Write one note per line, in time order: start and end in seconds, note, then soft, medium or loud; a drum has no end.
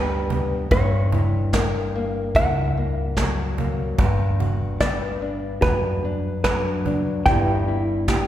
0.00 0.67 D2 medium
0.00 0.70 G2 medium
0.00 0.66 G3 medium
0.00 0.30 B3 medium
0.00 0.71 D4 medium
0.00 0.67 B4 medium
0.00 0.71 B4 medium
0.30 0.67 B3 medium
0.30 cajon bass medium
0.71 2.31 G1 medium
0.71 3.98 G2 medium
0.71 1.84 C#5 medium
0.71 kick loud
0.71 cajon bass medium
0.71 cajon slap soft
1.12 2.36 E4 medium
1.12 cajon bass medium
1.53 3.94 A#4 medium
1.53 kick medium
1.53 snare loud
1.53 cajon slap medium
1.84 2.36 B4 medium
1.96 2.76 A#3 medium
2.35 3.95 C#2 medium
2.35 3.95 E4 medium
2.35 3.17 F#5 medium
2.35 kick loud
2.35 cajon bass medium
2.35 cajon slap soft
2.77 3.58 A#3 medium
3.17 4.02 F#3 medium
3.17 3.54 E5 medium
3.17 kick medium
3.17 snare medium
3.17 cajon slap medium
3.58 4.00 A#3 medium
3.58 cajon bass medium
3.99 5.58 G1 medium
3.99 7.26 G2 medium
3.99 kick loud
3.99 cajon bass medium
3.99 cajon slap soft
4.40 5.63 F#4 medium
4.40 cajon bass medium
4.80 7.29 B4 medium
4.80 5.62 D5 medium
4.80 kick medium
4.80 snare loud
4.80 cajon slap medium
5.22 6.04 D4 medium
5.62 7.22 F#2 medium
5.62 7.22 F#4 medium
5.62 6.43 B4 medium
5.62 cajon bass medium
5.62 kick loud
5.62 cajon slap soft
6.05 6.86 D4 medium
6.44 7.22 F#3 medium
6.44 7.28 B4 medium
6.44 kick medium
6.44 cajon slap medium
6.44 snare medium
6.86 7.22 D4 medium
6.86 cajon bass medium
7.26 8.27 G1 medium
7.26 8.27 G2 medium
7.26 8.27 G3 medium
7.26 8.27 B3 medium
7.26 7.67 E4 medium
7.26 8.27 G5 loud
7.26 kick loud
7.26 cajon bass medium
7.26 cajon slap soft
7.30 8.09 G4 medium
7.68 8.27 E4 medium
8.08 8.27 G4 medium
8.08 kick medium
8.08 snare medium
8.08 cajon slap medium